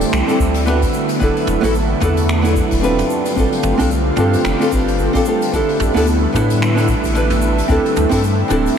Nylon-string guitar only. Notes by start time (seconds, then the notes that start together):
Already playing: C4 D4 G4 A4
0.27 C4 D4 E4 A4
0.66 B3 D4 E4 F#4 B4
1.19 B3 D4 E4 A4
1.61 B3 D4 E4 F#4 A4
2.00 B3 D4 E4 A4
2.42 B3 D4 E4 A4
2.81 C4 D4 F4 G4 B4
3.36 C4 D4 F4 G4 A4
3.78 C4 D4 F4 G4 A4
4.16 C4 D4 F4 G4 A4
4.59 C4 D4 F4 G4 A4
4.71 C4 D4 F4 G4 B4
5.13 C4 D4 F4 G4 A4
5.25 C4 D4 F4 G4
5.29 A4
5.52 B3 D4 E4 G4 A4
5.94 B3 D4 E4 G4 A4
6.33 B3 D4 E4 A4
6.75 B3 D4 E4 A4
7.14 B3 D4 E4 G4 B4
7.68 C4 D4 E4 G4 A4
8.09 C4 D4 E4 A4
8.48 C4 D4 E4 A4